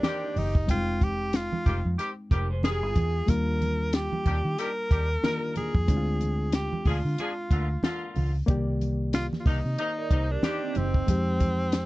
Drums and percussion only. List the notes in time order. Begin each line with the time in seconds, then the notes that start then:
0.03 snare, closed hi-hat, muted conga, high conga
0.36 open hi-hat, muted conga, high conga, low conga
0.55 kick
0.69 kick, closed hi-hat, low conga
1.01 kick, closed hi-hat, muted conga, high conga
1.33 snare, closed hi-hat, muted conga
1.53 high conga
1.66 kick, closed hi-hat, muted conga, low conga
1.99 closed hi-hat, muted conga
2.31 kick, closed hi-hat, muted conga
2.63 snare, closed hi-hat, muted conga, high conga
2.96 kick, closed hi-hat, muted conga, high conga, low conga
3.28 kick, closed hi-hat, muted conga, low conga
3.62 closed hi-hat, muted conga, high conga
3.93 snare, closed hi-hat
4.13 high conga
4.26 kick, closed hi-hat, muted conga, low conga
4.58 closed hi-hat
4.91 kick, closed hi-hat
5.24 snare, closed hi-hat, muted conga, high conga
5.56 closed hi-hat, high conga, low conga
5.75 kick
5.88 kick, closed hi-hat, muted conga, low conga
6.21 closed hi-hat, high conga
6.52 snare, closed hi-hat, muted conga
6.73 high conga
6.85 kick, open hi-hat, muted conga, low conga
7.18 closed hi-hat, muted conga
7.51 kick, closed hi-hat, muted conga
7.83 snare, closed hi-hat, muted conga, high conga
8.16 open hi-hat, muted conga, high conga, low conga
8.48 kick, closed hi-hat, muted conga, low conga
8.81 closed hi-hat, high conga
9.13 snare, closed hi-hat, muted conga
9.33 snare, high conga
9.46 kick, open hi-hat, low conga
9.79 closed hi-hat
10.11 kick, closed hi-hat, muted conga
10.43 snare, closed hi-hat, muted conga, high conga
10.75 closed hi-hat, muted conga, high conga, low conga
10.94 kick
11.08 kick, closed hi-hat, muted conga, low conga
11.40 kick, closed hi-hat, muted conga, high conga
11.72 snare, closed hi-hat, muted conga